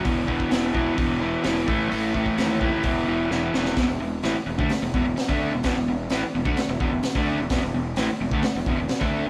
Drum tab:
HH |o---o---o---o---|o---o---o-------|o---o---o---o---|o---o---o---o---|
SD |----o-------o---|----o-------o-oo|o---o---o---o---|o---o---o---o---|
BD |o-oo--o-o-----o-|--oo--o-o-------|o------o--o--o--|o------o--o--o--|

HH |o---o---o---o---|
SD |o---o---o---o---|
BD |o------o--o--o--|